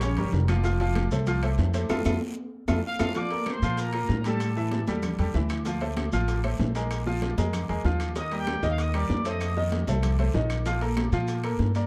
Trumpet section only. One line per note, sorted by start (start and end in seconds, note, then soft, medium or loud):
0.00 0.31 C#5 medium
0.00 0.31 C#6 medium
2.86 3.14 F5 loud
3.17 3.48 D5 loud
3.17 3.48 D6 medium
3.49 3.79 C5 medium
3.49 3.79 C6 medium
3.80 4.26 A#4 medium
3.80 4.26 A#5 medium
4.26 4.84 A4 medium
4.26 4.85 A5 medium
8.17 8.36 D#5 medium
8.17 8.36 D#6 medium
8.38 8.67 G4 medium
8.38 8.67 G5 loud
8.69 8.78 F5 medium
8.80 8.95 D#5 medium
8.80 8.95 D#6 medium
8.95 9.24 D5 medium
8.95 9.24 D6 medium
9.27 9.55 D#5 medium
9.27 9.55 D#6 medium